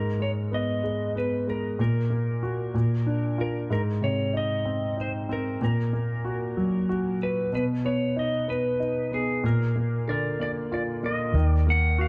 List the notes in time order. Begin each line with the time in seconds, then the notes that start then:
Already playing: G#2 A#4
0.19 G#3 C#5
0.52 B3 D#5
0.84 G#3
1.15 B3 B4
1.47 G#3 A#4
1.79 A#2 A#4
2.10 A#3
2.43 F#4
2.74 A#2
3.06 D4
3.38 F4 A#4
3.70 G#2 A#4
4.02 C3 C#5
4.33 D#4 D#5
4.65 C4
4.97 D#4 C5
5.29 C4 A#4
5.61 A#2 A#4
5.93 A#3
6.25 F#4
6.57 F#3
6.89 F#4
7.23 B4
7.53 B2 B4
7.85 B3 C#5
8.16 D#4 D#5
8.48 B3 B4
8.80 D#4
9.12 B3 G#4
9.44 A#2 A#4
9.76 A#3
10.08 D3 A#4 D5
10.40 A#3 D5
10.72 F4 D5
11.03 A#3 D#5
11.34 D#2 D#3
11.47 D5
11.67 A#3 F#5
11.98 F#4 F5